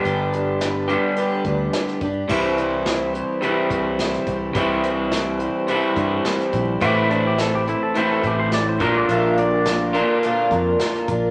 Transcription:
<<
  \new Staff \with { instrumentName = "Pedal steel guitar" } { \time 4/4 \key c \major \tempo 4 = 106 r1 | r1 | r1 | g'16 e'16 d'16 g'16 a'16 g'16 e'16 a'16 c''16 a'16 g'16 c''16 d''16 c''16 bes'16 d''16 |
e''8 d''2. r8 | }
  \new Staff \with { instrumentName = "Twelve-string acoustic guitar" } { \time 4/4 \key c \major <g d' g' b'>8 <d' g' b'>8 <g d' g' b'>8 <d' g' b'>8 <g d' g' b'>8 <d' g' b'>8 <g d' g' b'>8 <d' g' b'>8 | <c e g c' e' c''>8 <g c' e' c''>8 <g c' e' c''>8 <g c' e' c''>8 <c e g c' e' c''>8 <g c' e' c''>8 <g c' e' c''>8 <g c' e' c''>8 | <c e g c' e' c''>8 <g c' e' c''>8 <g c' e' c''>8 <g c' e' c''>8 <c e g c' e' c''>8 <g c' e' c''>8 <g c' e' c''>8 <g c' e' c''>8 | <a, e a c' e' c''>8 <a c' e' c''>8 <a c' e' c''>8 <a c' e' c''>8 <a, e a c' e' c''>8 <a c' e' c''>8 <a c' e' c''>8 <bes d' f' bes'>8 |
<bes, f bes d' f' bes'>8 <bes d' f' bes'>8 <bes d' f' bes'>8 <bes d' f' bes'>8 <bes, f bes d' f' bes'>8 <bes d' f' bes'>8 <bes d' f' bes'>8 <bes d' f' bes'>8 | }
  \new Staff \with { instrumentName = "Clean electric guitar" } { \clef bass \time 4/4 \key c \major <g, d g b d' g'>4. <g, d g b d' g'>2 r8 | <c e g c' e'>2 <c e g c' e'>2 | <c e g c' e'>2 <c e g c' e'>2 | <a, e a c' e'>2 <a, e a c' e'>4. <bes, d bes d' f'>8~ |
<bes, d bes d' f'>4. <bes, d bes d' f'>2 r8 | }
  \new Staff \with { instrumentName = "Fingered electric bass" } { \clef bass \time 4/4 \key c \major g,,2 r8 d,8 r8 g,8 | c,2 r8 c,4 c,8 | c,2 r8 g,8 r8 bes,,8 | a,,2 r8 a,,4 bes,,8 |
bes,,2 r8 f,8 r8 bes,,8 | }
  \new DrumStaff \with { instrumentName = "Drums" } \drummode { \time 4/4 hh8 hh8 <hh sn>8 hh8 hh8 <hh bd>8 <hh sn>16 sn16 <hh bd>8 | <cymc bd>8 hh8 <hh sn>8 hh8 hh8 <hh bd>8 <hh sn>16 sn16 <hh bd>8 | <hh bd>8 hh8 <hh sn>8 hh8 hh8 <hh bd>8 <hh sn>16 sn16 <hh bd>8 | <hh bd>8 hh8 <hh sn>8 hh8 hh8 <hh bd>8 <hh sn>8 <hh bd>8 |
hh8 hh8 <hh sn>8 hh8 hh8 <hh bd>8 <hh sn>16 sn16 <hh bd>8 | }
>>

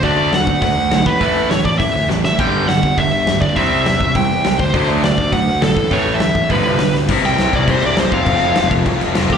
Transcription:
<<
  \new Staff \with { instrumentName = "Lead electric guitar" } { \time 4/4 \key d \mixolydian \tempo 4 = 204 d''4 fis''4 fis''4. b'8~ | b'4 cis''8 d''8 e''4 r8 e''8 | g''4 fis''4 e''4. d''8 | e''2 g''4. c''8~ |
c''8 r8 d''4 fis''4 a'4 | cis''8. e''16 e''4 b'4. r8 | \key c \major r8 g''4 d''8 c''8 d''8 c''8 f''8~ | f''4. r2 g'8 | }
  \new Staff \with { instrumentName = "Distorted electric guitar" } { \clef bass \time 4/4 \key d \mixolydian <d a d'>2. <d a d'>8 <a, e a>8~ | <a, e a>2. <a, e a>8 r8 | <g, d g>2.~ <g, d g>8 <g, d g>8 | <c g c'>2.~ <c g c'>8 <d a d'>8~ |
<d a d'>2. <d a d'>8 <a, e a>8~ | <a, e a>2 <g, d g>2 | \key c \major <c g c'>4 <c g c'>4 <c g c'>4 <c g c'>8 r8 | <f, c f>4 <f, c f>4 <f, c f>4 <f, c f>4 | }
  \new Staff \with { instrumentName = "Overdriven electric guitar" } { \clef bass \time 4/4 \key d \mixolydian <d a d'>4 <d a>8 r8 <d a>8 r8 <d a>8 r8 | <a, e a>4 <a, e>8 r8 <a, e>8 r8 <a, e>8 r8 | <g, d g>4 <g, d>8 r8 <g, d>8 r8 <g, d>8 r8 | <c g c'>4 <c g>8 r8 <c g>8 r8 <c g>8 r8 |
<d fis a>4 <d fis>8 r8 <d fis>8 r8 <d fis>8 r8 | <a, e a>4 <a, e>8 r8 <g, d f>4 <g, d>8 r8 | \key c \major <c e g c' e'>2.~ <c e g c' e'>8 <f a c' f'>8~ | <f a c' f'>2. <f a c' f'>8 r8 | }
  \new Staff \with { instrumentName = "Overdriven electric guitar" } { \clef bass \time 4/4 \key d \mixolydian <d a d'>4 <d a>8 r8 <d a>8 r8 <d a>8 r8 | <a, e a>4 <a, e>8 r8 <a, e>8 r8 <a, e>8 r8 | <g, d g>4 <g, d>8 r8 <g, d>8 r8 <g, d>8 r8 | <c g c'>4 <c g>8 r8 <c g>8 r8 <c g>8 r8 |
<d a d'>4 <d a>8 r8 <d a>8 r8 <d a>8 r8 | <a, e a>4 <a, e>8 r8 <g, d g>4 <g, d>8 r8 | \key c \major r1 | r1 | }
  \new Staff \with { instrumentName = "Picked electric bass" } { \clef bass \time 4/4 \key d \mixolydian d,8 d,8 d,8 d,8 d,8 d,8 b,,8 a,,8 | a,,8 a,,8 d,8 a,,8 a,,8 d,8 a,,8 a,,8 | g,,8 g,,8 g,,8 g,,8 g,,8 g,,8 d,8 g,8 | c,8 c,8 e,8 c,8 c,8 e,8 c,8 d,8 |
d,8 d,8 d,8 d,8 d,8 d,8 a,,8 a,,8 | a,,8 a,,8 d,8 a,,8 g,,8 c,8 g,,8 d,8 | \key c \major c,8 c,8 c,8 c,8 c,8 c,8 c,8 f,,8 | f,,8 f,,8 f,,8 f,,8 c,8 f,,8 f,,8 d,8 | }
  \new DrumStaff \with { instrumentName = "Drums" } \drummode { \time 4/4 <hho bd>4 <hho sn>8 bd8 <hho bd>4 <hho sn>8 bd8 | <hho bd>4 <hho sn>8 bd8 <hho bd>4 sn8 sn8 | <cymc bd>4 <hho sn>8 bd8 <hho bd>4 <hho sn>8 bd8 | <hho bd>4 <hho sn>8 bd8 <hho bd>4 <hho sn>8 bd8 |
<hho bd>4 <hho sn>8 bd8 <hho bd>4 <hho sn>8 bd8 | <hho bd>4 <hho sn>8 bd8 <hho bd>4 <hho sn>8 sn8 | <cymc bd>8 cymc8 <cymc sn>8 <cymc bd>8 <cymc bd>8 cymc8 <cymc sn>8 <cymc bd>8 | <cymc bd>8 cymc8 <cymc sn>8 <cymc bd>8 <cymc bd>8 cymc8 <cymc sn>8 <cymc bd>8 | }
>>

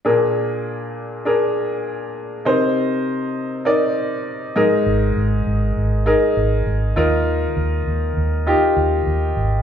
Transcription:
<<
  \new Staff \with { instrumentName = "Grand piano" } { \time 4/4 \key bes \mixolydian \tempo 4 = 100 <d' aes' bes'>2 <d' aes' bes'>2 | <ees' bes' c''>2 <ees' bes' d''>4. <ees' aes' bes'>8~ | <ees' aes' bes'>4. r8 <ees' aes' bes'>4. <ees' f' bes'>8~ | <ees' f' bes'>4. r8 <ees' f' g'>2 | }
  \new Staff \with { instrumentName = "Grand piano" } { \clef bass \time 4/4 \key bes \mixolydian bes,4. r2 r8 | c4. r2 aes,8~ | aes,4 r2 r8 ees8~ | ees4 r2. | }
  \new Staff \with { instrumentName = "Fingered electric bass" } { \clef bass \time 4/4 \key bes \mixolydian r1 | r1 | aes,,8 aes,,8 aes,,8 aes,,8. r16 aes,,8 aes,,8 ees,8~ | ees,8 ees,8 ees,8 ees,8. r16 ees,8 ees,8 aes,,8 | }
>>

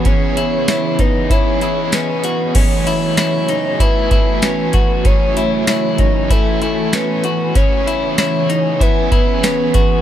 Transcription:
<<
  \new Staff \with { instrumentName = "Soft synth lead" } { \time 4/4 \key fis \dorian \tempo 4 = 96 cis''4. b'8 cis''4 b'4 | cis''4 cis''4 b'4 b'4 | cis''4 cis''4 a'8 a'8 b'4 | cis''4 cis''4 b'4 b'4 | }
  \new Staff \with { instrumentName = "Clean electric guitar" } { \time 4/4 \key fis \dorian cis'8 e'8 e'8 dis'8 e'8 e'8 cis'8 fis'8 | cis'8 e'8 e'8 dis'8 e'8 e'8 cis'8 fis'8 | cis'8 e'8 e'8 dis'8 e'8 e'8 cis'8 fis'8 | cis'8 e'8 e'8 dis'8 e'8 e'8 cis'8 fis'8 | }
  \new Staff \with { instrumentName = "Ambient pad" } { \time 4/4 \key fis \dorian << { <e gis'>1 | <e gis''>1~ | <e gis''>1~ | <e gis''>1 | } \\ { <b dis''>1 | <a fis'>1~ | <a fis'>1 | <b cis'>1 | } >> }
  \new Staff \with { instrumentName = "Overdriven electric guitar" } { \time 4/4 \key fis \dorian <cis e b cis' gis'>2 <e b cis' gis'>8 <b cis' gis'>4. | <fis, cis e a cis' gis'>2 <e a cis' gis'>8 <e a cis' gis'>4. | <fis, cis e a cis' gis'>2 <e a cis'>8 <e a cis'>4. | <cis e b cis' gis'>2 <e b cis' gis'>8 <b cis' gis'>4. | }
  \new DrumStaff \with { instrumentName = "Drums" } \drummode { \time 4/4 <hh bd>8 hh8 <hh sn tamb>8 <hh bd>8 <hh bd>8 hh8 <hh sn tamb>8 hh8 | <cymc hh bd>8 hh8 <hh sn tamb>8 hh8 <hh bd>8 <hh bd>8 <hh sn tamb>8 <hh bd>8 | <hh bd>8 hh8 <hh sn tamb>8 <hh bd>8 <hh bd>8 hh8 <hh sn tamb>8 hh8 | <hh bd>8 hh8 <hh sn tamb>8 hh8 <hh bd>8 <hh bd>8 <hh sn tamb>8 <hh bd>8 | }
>>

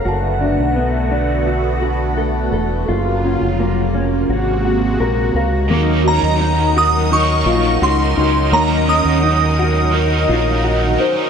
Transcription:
<<
  \new Staff \with { instrumentName = "Synth bell" } { \time 4/4 \key ees \dorian \tempo 4 = 85 r1 | r1 | r8 bes''4 ees'''8 des'''4 c'''4 | bes''8 ees'''2. r8 | }
  \new Staff \with { instrumentName = "Celesta" } { \time 4/4 \key ees \dorian a''2~ a''8 r4. | r2. r8 f''8~ | f''8 ges'2~ ges'8 r4 | des''2~ des''8 r4 c''8 | }
  \new Staff \with { instrumentName = "Clean electric guitar" } { \time 4/4 \key ees \dorian fis'8 d'8 b8 d'8 fis'8 fis'8 a'8 a'8 | f'8 des'8 bes8 des'8 ges'8 ges'8 bes'8 bes'8 | bes8 des'8 ees'8 ges'8 ees'8 f'8 ges'8 ees'8 | bes8 des'8 ees'8 ges'8 ees'8 f'8 ges'8 ees'8 | }
  \new Staff \with { instrumentName = "Overdriven electric guitar" } { \time 4/4 \key ees \dorian r1 | r1 | <ees ges des' ees' bes'>2 <ees ges des' ees' bes'>4. <des' ees' bes'>8 | <ees ges des' ees'>2 <ees ges des' ees' bes'>4. <des' ees' bes'>8 | }
  \new Staff \with { instrumentName = "Analog synth pad" } { \time 4/4 \key ees \dorian << { <d a fis'>1 | <des ges f'>2 <c aes ges'>2 | <ges ees' ees''>1~ | <ges ees' ees''>1 | } \\ { b1 | bes1 | bes'1~ | bes'1 | } >> }
  \new Staff \with { instrumentName = "Fingered electric bass" } { \clef bass \time 4/4 \key ees \dorian fis,,8. b,,2~ b,,8. fes,,8 | ges,,8. f,,4~ f,,16 aes,,4 bes,,8 des,8 | ees,8. ees,4.~ ees,16 bes,,8 des,8 des,8 | ees,8. ees,4.~ ees,16 bes,,4 r8 | }
>>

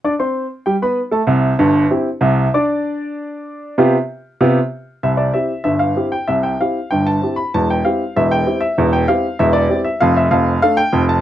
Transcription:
<<
  \new Staff \with { instrumentName = "Upright piano" } { \time 2/4 \key c \major \tempo 4 = 96 <d' d'' d'''>16 <c' c'' c'''>8. <g g' g''>16 <b b' b''>8 <a a' a''>16 | r2 | <d' d'' d'''>2~ | <d' d'' d'''>4. r8 |
e''16 d''16 e''8 e''16 f''8 g''16 | e''16 g''16 f''8 g''16 a''8 b''16 | a''16 g''16 f''8 e''16 g''8 e''16~ | e''16 g''16 f''8 e''16 d''8 e''16 |
f''16 e''16 f''8 f''16 g''8 a''16 | }
  \new Staff \with { instrumentName = "Upright piano" } { \time 2/4 \key c \major r2 | <c, c>8 <g,, g,>8 <c' e' g'>8 <c, c>8 | r2 | <c b f' g'>8 r8 <c b f' g'>8 r8 |
<c, c>8 <c' e' g'>8 <g,, g,>8 <c' e' g'>8 | <c, c>8 <c' e' g'>8 <g,, g,>8 <c' e' g'>8 | <e,, e,>8 <c' e' g'>8 <e,, e,>8 <c' e' g'>8 | <e,, e,>8 <c' e' g'>8 <e,, e,>8 <c' e' g'>8 |
<f,, f,>8 <f,, f,>8 <a d' a'>8 <f,, f,>8 | }
>>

